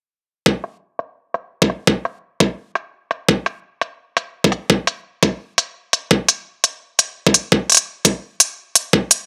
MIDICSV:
0, 0, Header, 1, 2, 480
1, 0, Start_track
1, 0, Tempo, 352941
1, 628, Time_signature, 4, 2, 24, 8
1, 12596, End_track
2, 0, Start_track
2, 0, Title_t, "Drums"
2, 627, Note_on_c, 9, 36, 102
2, 763, Note_off_c, 9, 36, 0
2, 868, Note_on_c, 9, 42, 73
2, 1004, Note_off_c, 9, 42, 0
2, 1348, Note_on_c, 9, 42, 61
2, 1484, Note_off_c, 9, 42, 0
2, 1827, Note_on_c, 9, 42, 74
2, 1963, Note_off_c, 9, 42, 0
2, 2202, Note_on_c, 9, 36, 92
2, 2309, Note_on_c, 9, 42, 63
2, 2338, Note_off_c, 9, 36, 0
2, 2445, Note_off_c, 9, 42, 0
2, 2548, Note_on_c, 9, 36, 111
2, 2684, Note_off_c, 9, 36, 0
2, 2790, Note_on_c, 9, 42, 73
2, 2926, Note_off_c, 9, 42, 0
2, 3267, Note_on_c, 9, 42, 62
2, 3268, Note_on_c, 9, 36, 96
2, 3403, Note_off_c, 9, 42, 0
2, 3404, Note_off_c, 9, 36, 0
2, 3745, Note_on_c, 9, 42, 73
2, 3881, Note_off_c, 9, 42, 0
2, 4228, Note_on_c, 9, 42, 63
2, 4364, Note_off_c, 9, 42, 0
2, 4468, Note_on_c, 9, 36, 108
2, 4604, Note_off_c, 9, 36, 0
2, 4708, Note_on_c, 9, 42, 72
2, 4844, Note_off_c, 9, 42, 0
2, 5188, Note_on_c, 9, 42, 60
2, 5324, Note_off_c, 9, 42, 0
2, 5667, Note_on_c, 9, 42, 75
2, 5803, Note_off_c, 9, 42, 0
2, 6042, Note_on_c, 9, 36, 98
2, 6147, Note_on_c, 9, 42, 62
2, 6178, Note_off_c, 9, 36, 0
2, 6283, Note_off_c, 9, 42, 0
2, 6388, Note_on_c, 9, 36, 110
2, 6524, Note_off_c, 9, 36, 0
2, 6628, Note_on_c, 9, 42, 70
2, 6764, Note_off_c, 9, 42, 0
2, 7108, Note_on_c, 9, 36, 98
2, 7108, Note_on_c, 9, 42, 58
2, 7244, Note_off_c, 9, 36, 0
2, 7244, Note_off_c, 9, 42, 0
2, 7589, Note_on_c, 9, 42, 68
2, 7725, Note_off_c, 9, 42, 0
2, 8067, Note_on_c, 9, 42, 59
2, 8203, Note_off_c, 9, 42, 0
2, 8308, Note_on_c, 9, 36, 110
2, 8444, Note_off_c, 9, 36, 0
2, 8548, Note_on_c, 9, 42, 67
2, 8684, Note_off_c, 9, 42, 0
2, 9029, Note_on_c, 9, 42, 56
2, 9165, Note_off_c, 9, 42, 0
2, 9505, Note_on_c, 9, 42, 71
2, 9641, Note_off_c, 9, 42, 0
2, 9881, Note_on_c, 9, 36, 95
2, 9986, Note_on_c, 9, 42, 58
2, 10017, Note_off_c, 9, 36, 0
2, 10122, Note_off_c, 9, 42, 0
2, 10227, Note_on_c, 9, 36, 103
2, 10363, Note_off_c, 9, 36, 0
2, 10467, Note_on_c, 9, 42, 31
2, 10499, Note_off_c, 9, 42, 0
2, 10499, Note_on_c, 9, 42, 40
2, 10534, Note_off_c, 9, 42, 0
2, 10534, Note_on_c, 9, 42, 48
2, 10567, Note_off_c, 9, 42, 0
2, 10567, Note_on_c, 9, 42, 55
2, 10703, Note_off_c, 9, 42, 0
2, 10947, Note_on_c, 9, 36, 93
2, 10947, Note_on_c, 9, 42, 58
2, 11083, Note_off_c, 9, 36, 0
2, 11083, Note_off_c, 9, 42, 0
2, 11426, Note_on_c, 9, 42, 68
2, 11562, Note_off_c, 9, 42, 0
2, 11906, Note_on_c, 9, 42, 59
2, 12042, Note_off_c, 9, 42, 0
2, 12148, Note_on_c, 9, 36, 106
2, 12284, Note_off_c, 9, 36, 0
2, 12388, Note_on_c, 9, 42, 71
2, 12524, Note_off_c, 9, 42, 0
2, 12596, End_track
0, 0, End_of_file